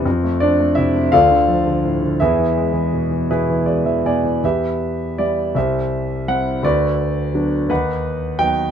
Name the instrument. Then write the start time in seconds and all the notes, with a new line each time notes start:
grand piano
0.06 F2
0.24 A3
0.40 C4 D4 D5
0.59 A3
0.75 C3 E4 E5
0.95 A3
1.12 D2 F4 A4 D5 F5
1.31 D3
1.48 F3
1.67 D3
1.85 A2
2.03 D3
2.20 E2 E4 G#4 B4 E5
2.39 E3
2.58 G#3
2.73 E3
2.93 B2
3.11 E3
3.30 B2 E4 G#4 B4
3.50 E3
3.66 G#3 D5
3.85 E3 E5
4.05 B2 D5 G#5
4.24 E3
4.44 E2 G4 B4 E5
5.18 E3 G3 E4 D5
5.55 C2 G4 C5 E5
6.28 G3 C4 E4 F#5
6.63 D2 F#4 B4 D5
7.34 F#3 B3 D4
7.69 D#2 D#4 B4 F#5
8.39 F#3 B3 D#4 G5